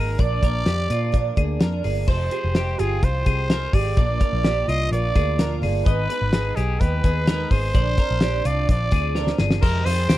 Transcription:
Already playing: picked electric bass G#1, twelve-string acoustic guitar F3 A#3 D#4, clean electric guitar G#4, trumpet A#4
0.18 picked electric bass A#1, twelve-string acoustic guitar A#2 D3 F3 A#3 D4, clean electric guitar D5, trumpet D5, kick, closed hi-hat
0.41 picked electric bass A#1, twelve-string acoustic guitar F3 A#3 D4, clean electric guitar A#4, kick, closed hi-hat
0.66 picked electric bass F2, twelve-string acoustic guitar D3 F3 A#3 D4, clean electric guitar G4, snare, closed hi-hat
0.88 picked electric bass A#2, twelve-string acoustic guitar F3 A#3 D4, clean electric guitar F4, closed hi-hat
1.12 twelve-string acoustic guitar A#2 D3 F3 A#3 D4, kick, closed hi-hat
1.36 picked electric bass D2, twelve-string acoustic guitar F3 A#3 D4, clean electric guitar G#4, kick, closed hi-hat
1.60 picked electric bass F2, twelve-string acoustic guitar D3 F3 A#3 D4, clean electric guitar A#4, snare, closed hi-hat
1.83 picked electric bass G1, twelve-string acoustic guitar F3 A#3 D4, clean electric guitar G#4, open hi-hat
2.08 picked electric bass F1, twelve-string acoustic guitar F2 C3 F3 G#3 C4 G4, clean electric guitar C5, trumpet C5, kick, crash
2.31 twelve-string acoustic guitar F3 G#3 C4 G4, clean electric guitar G#4, closed hi-hat
2.44 picked electric bass F1
2.55 twelve-string acoustic guitar F2 C3 F3 G#3 C4 G4, clean electric guitar G4, snare, closed hi-hat
2.78 picked electric bass G1, twelve-string acoustic guitar F3 G#3 C4 G4, clean electric guitar F4, trumpet G#4, closed hi-hat
3.02 picked electric bass C2, twelve-string acoustic guitar F3 G#3 C4 G4, trumpet C5, kick, closed hi-hat
3.25 picked electric bass C2, twelve-string acoustic guitar F3 G#3 C4 G4, clean electric guitar G#4, kick, closed hi-hat
3.50 twelve-string acoustic guitar F2 C3 F3 G#3 C4 G4, clean electric guitar A#4, snare, closed hi-hat
3.73 picked electric bass G#1, twelve-string acoustic guitar F3 G#3 C4 G4, clean electric guitar G#4, trumpet D5, kick, open hi-hat
3.97 picked electric bass A#1, twelve-string acoustic guitar A#2 F3 A#3 D4 F4, clean electric guitar D5, kick, closed hi-hat
4.20 twelve-string acoustic guitar A#3 D4 F4, clean electric guitar A#4, kick, closed hi-hat
4.33 picked electric bass A#1
4.44 twelve-string acoustic guitar A#2 F3 A#3 D4 F4, clean electric guitar G4, snare, closed hi-hat
4.67 picked electric bass C2, twelve-string acoustic guitar A#3 D4 F4, clean electric guitar F4, trumpet D#5, closed hi-hat
4.91 picked electric bass A#1, twelve-string acoustic guitar F3 A#3 D4 F4, trumpet D5, closed hi-hat
5.14 picked electric bass D2, twelve-string acoustic guitar A#3 D4 F4, clean electric guitar G#4, kick, closed hi-hat
5.38 twelve-string acoustic guitar A#2 F3 A#3 D4 F4, clean electric guitar A#4, snare, closed hi-hat
5.62 picked electric bass G1, twelve-string acoustic guitar A#3 D4 F4, clean electric guitar G#4, open hi-hat
5.85 picked electric bass G#1, twelve-string acoustic guitar G#2 D#3 G#3 B3 D#4, trumpet B4, clean electric guitar D#5, kick, closed hi-hat
6.08 twelve-string acoustic guitar G#3 B3 D#4, clean electric guitar B4, closed hi-hat
6.22 picked electric bass G#1
6.32 twelve-string acoustic guitar G#2 D#3 G#3 B3 D#4, clean electric guitar G#4, snare, closed hi-hat
6.56 picked electric bass B1, twelve-string acoustic guitar G#3 B3 D#4, clean electric guitar G4, trumpet G#4, closed hi-hat
6.80 picked electric bass D#2, twelve-string acoustic guitar D#3 G#3 B3 D#4, trumpet B4, kick, closed hi-hat
7.04 picked electric bass D#2, twelve-string acoustic guitar G#3 B3 D#4, clean electric guitar G#4, kick, closed hi-hat
7.27 twelve-string acoustic guitar G#2 D#3 G#3 B3 D#4, clean electric guitar A#4, snare, closed hi-hat
7.50 picked electric bass G#1, twelve-string acoustic guitar G#3 B3 D#4, clean electric guitar G#4, trumpet C5, kick, open hi-hat
7.74 picked electric bass A#1, twelve-string acoustic guitar A#2 D3 F3 C4 D4, clean electric guitar D5, kick, closed hi-hat
7.97 twelve-string acoustic guitar F3 C4 D4, clean electric guitar A#4, kick, closed hi-hat
8.11 picked electric bass A#1
8.21 twelve-string acoustic guitar A#2 D3 F3 C4 D4, clean electric guitar G4, snare, closed hi-hat
8.45 picked electric bass C2, twelve-string acoustic guitar F3 C4 D4, clean electric guitar F4, trumpet D5, closed hi-hat
8.68 picked electric bass A#1, twelve-string acoustic guitar D3 F3 C4 D4, trumpet D5, kick, closed hi-hat
8.91 picked electric bass D2, twelve-string acoustic guitar F3 C4 D4, clean electric guitar G#4, kick, closed hi-hat
9.15 twelve-string acoustic guitar A#2 D3 F3 C4 D4, clean electric guitar A#4, snare
9.27 snare
9.38 picked electric bass G1, twelve-string acoustic guitar F3 C4 D4, clean electric guitar G#4, snare
9.51 snare
9.62 twelve-string acoustic guitar F2 C3 D#3 G#3 C4, picked electric bass F2, trumpet A#4, clean electric guitar C5, kick, crash, tambourine
9.85 picked electric bass F2, twelve-string acoustic guitar D#3 G#3 C4, clean electric guitar G#4, trumpet C5, hi-hat pedal, open hi-hat, tambourine
10.09 picked electric bass D#2, twelve-string acoustic guitar C3 D#3 G#3 C4, clean electric guitar G4, snare, hi-hat pedal, open hi-hat, tambourine

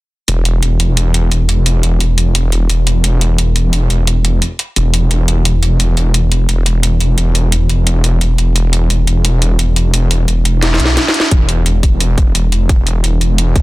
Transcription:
0.28 detuned saw bass E1, closed hi-hat
0.45 closed hi-hat
0.63 closed hi-hat
0.80 closed hi-hat
0.97 closed hi-hat
1.14 detuned saw bass E1, closed hi-hat
1.32 closed hi-hat
1.49 closed hi-hat
1.66 detuned saw bass E1, closed hi-hat
1.83 closed hi-hat
2.00 closed hi-hat
2.18 closed hi-hat
2.35 closed hi-hat
2.52 detuned saw bass E1, closed hi-hat
2.69 closed hi-hat
2.87 closed hi-hat
3.04 detuned saw bass E1, closed hi-hat
3.21 closed hi-hat
3.38 closed hi-hat
3.56 closed hi-hat
3.73 closed hi-hat
3.90 detuned saw bass E1, closed hi-hat
4.07 closed hi-hat
4.25 closed hi-hat
4.42 closed hi-hat
4.59 closed hi-hat
4.76 detuned saw bass E1, closed hi-hat
4.94 closed hi-hat
5.11 closed hi-hat
5.28 detuned saw bass E1, closed hi-hat
5.45 closed hi-hat
5.63 closed hi-hat
5.80 detuned saw bass E1, closed hi-hat
5.97 closed hi-hat
6.14 closed hi-hat
6.32 closed hi-hat
6.49 closed hi-hat
6.66 detuned saw bass E1, closed hi-hat
6.83 closed hi-hat
7.00 closed hi-hat
7.18 detuned saw bass E1, closed hi-hat
7.35 closed hi-hat
7.52 closed hi-hat
7.69 closed hi-hat
7.87 closed hi-hat
8.04 detuned saw bass E1, closed hi-hat
8.21 closed hi-hat
8.38 closed hi-hat
8.56 detuned saw bass E1, closed hi-hat
8.73 closed hi-hat
8.90 closed hi-hat
9.07 closed hi-hat
9.25 closed hi-hat
9.42 detuned saw bass E1, closed hi-hat
9.59 closed hi-hat
9.76 closed hi-hat
9.94 detuned saw bass E1, closed hi-hat
10.11 closed hi-hat
10.28 closed hi-hat
10.45 closed hi-hat
10.62 snare, closed hi-hat
10.74 snare
10.80 detuned saw bass B1, closed hi-hat
10.85 snare
10.97 snare, closed hi-hat
11.08 snare
11.14 closed hi-hat
11.20 snare
11.31 detuned saw bass E1, kick, closed hi-hat
11.49 closed hi-hat
11.66 closed hi-hat
11.83 kick, closed hi-hat
12.00 closed hi-hat
12.18 detuned saw bass E1, kick, closed hi-hat
12.35 closed hi-hat
12.52 closed hi-hat
12.69 detuned saw bass E1, kick, closed hi-hat
12.87 closed hi-hat
13.04 closed hi-hat
13.21 closed hi-hat
13.38 closed hi-hat
13.56 detuned saw bass E1, kick, closed hi-hat

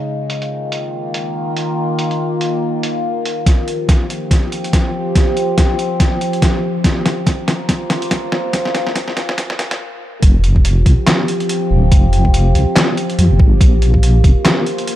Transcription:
0.08 synth drone D#3 A#3 F4
0.30 closed hi-hat
0.42 closed hi-hat
0.72 closed hi-hat
1.14 closed hi-hat
1.57 closed hi-hat
1.99 closed hi-hat
2.11 closed hi-hat
2.41 closed hi-hat
2.83 closed hi-hat
3.25 closed hi-hat
3.46 synth drone F3 C4 G4, kick, snare, closed hi-hat
3.68 closed hi-hat
3.89 kick, snare, closed hi-hat
4.10 closed hi-hat
4.31 kick, snare, closed hi-hat
4.52 closed hi-hat
4.64 closed hi-hat
4.73 kick, snare, closed hi-hat
5.15 kick, snare, closed hi-hat
5.37 closed hi-hat
5.58 kick, snare, closed hi-hat
5.79 closed hi-hat
6.00 kick, snare, closed hi-hat
6.21 closed hi-hat
6.33 closed hi-hat
6.42 kick, snare, closed hi-hat
6.84 synth drone A#3 F4 C5, kick, snare, closed hi-hat
7.06 snare, closed hi-hat
7.27 kick, snare, closed hi-hat
7.48 snare, closed hi-hat
7.69 kick, snare, closed hi-hat
7.90 snare, closed hi-hat
8.02 closed hi-hat
8.11 kick, snare, closed hi-hat
8.32 snare
8.53 kick, snare, closed hi-hat
8.65 snare
8.75 snare, closed hi-hat
8.87 snare
8.96 kick, snare, closed hi-hat
9.08 snare
9.17 snare, closed hi-hat
9.29 snare
9.38 kick, snare, closed hi-hat
9.50 snare
9.59 snare, closed hi-hat
9.71 snare, closed hi-hat
10.22 wobble bass F1, synth drone F3 C4 G4, kick, closed hi-hat
10.44 closed hi-hat
10.56 kick
10.65 closed hi-hat
10.86 wobble bass C2, kick, closed hi-hat
11.07 snare, clap, closed hi-hat
11.28 closed hi-hat
11.40 closed hi-hat
11.49 closed hi-hat
11.71 wobble bass D#1
11.92 wobble bass F1, kick, closed hi-hat
12.13 closed hi-hat
12.25 kick
12.34 closed hi-hat
12.55 wobble bass C2, closed hi-hat
12.76 snare, clap, closed hi-hat
12.97 closed hi-hat
13.10 closed hi-hat
13.19 wobble bass F2, closed hi-hat
13.31 wobble bass D#1
13.40 wobble bass G#1, kick
13.61 wobble bass A#1, synth drone A#3 F4 C5, kick, closed hi-hat
13.82 closed hi-hat
13.94 kick
14.03 closed hi-hat
14.24 wobble bass F1, kick, closed hi-hat
14.45 snare, clap, closed hi-hat
14.66 closed hi-hat
14.78 closed hi-hat
14.88 closed hi-hat

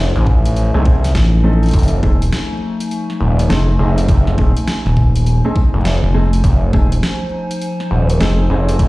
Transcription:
Already playing: analog synth bass F1, ambient pad F3 D#4 C5 G#5
0.16 analog synth bass A1, snare
0.27 kick
0.45 closed hi-hat
0.56 closed hi-hat
0.74 analog synth bass C2, clean electric guitar A3 C4 D#4 G#4
0.85 clean electric guitar A3 C4 D#4 G#4, kick
1.04 snare, closed hi-hat
1.15 analog synth bass A1, snare, closed hi-hat
1.44 clean electric guitar A3 C4 D#4 A4
1.63 closed hi-hat
1.66 closed hi-hat
1.69 closed hi-hat
1.71 analog synth bass F1, kick, closed hi-hat
1.74 ambient pad A3, closed hi-hat
1.79 closed hi-hat
1.83 closed hi-hat
1.88 closed hi-hat
2.03 analog synth bass D#1, clean electric guitar A3 C4 D#4 G#4, kick
2.22 closed hi-hat
2.33 snare, closed hi-hat
2.80 closed hi-hat
2.91 closed hi-hat
3.10 snare
3.20 analog synth bass D#1
3.39 snare, closed hi-hat
3.50 analog synth bass F1, clean electric guitar A3 C4 D#4 G#4, snare, closed hi-hat
3.79 analog synth bass F1, clean electric guitar A3 C4 D#4 G#4
3.98 snare, closed hi-hat
4.08 analog synth bass F1, kick, closed hi-hat
4.27 snare
4.38 analog synth bass D#1, clean electric guitar A3 C4 D#4 G#4, kick
4.57 closed hi-hat
4.68 snare, closed hi-hat
4.86 analog synth bass D#1, snare
4.97 kick
5.16 closed hi-hat
5.26 closed hi-hat
5.45 clean electric guitar A3 C4 D#4 G#4
5.56 kick
5.74 analog synth bass F1
5.85 snare, closed hi-hat
6.03 analog synth bass F1
6.14 clean electric guitar A3 C4 D#4 G#4
6.33 closed hi-hat
6.44 analog synth bass F1, ambient pad C5, kick, closed hi-hat
6.73 analog synth bass D#1, clean electric guitar A3 C4 D#4 G#4, kick
6.92 closed hi-hat
7.03 snare, closed hi-hat
7.51 closed hi-hat
7.62 closed hi-hat
7.80 snare
7.91 analog synth bass D#1
8.10 closed hi-hat
8.20 analog synth bass F1, clean electric guitar A3 C4 D#4 G#4, snare, closed hi-hat
8.50 analog synth bass F1, clean electric guitar A3 C4 D#4 G#4
8.69 snare, closed hi-hat
8.79 analog synth bass F1, kick, closed hi-hat

